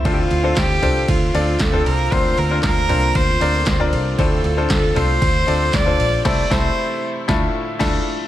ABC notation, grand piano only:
X:1
M:4/4
L:1/16
Q:1/4=116
K:Dm
V:1 name="Grand piano"
[CDFAc]2 z [CDFAc]2 z [CDFAc]3 z [CDFAd]2 z [CDFAc]2 z | [CDFBc]2 z [CDFBc]2 z [CDFBc]3 z [CDFBd]2 z [CDFBd]2 z | [CDFAc]2 z [CDFAc]2 z [CDFAc]3 z [CDFAd]2 z [CDFAc]2 z | [C,A,CEAc]2 [A,CEAc]2 z4 [A,,A,DEFA]2 z2 [A,DEFAa]2 z2 |]
V:2 name="Grand piano" clef=bass
A,,6 z8 z2 | D,6 z8 z2 | A,,6 z8 z2 | z16 |]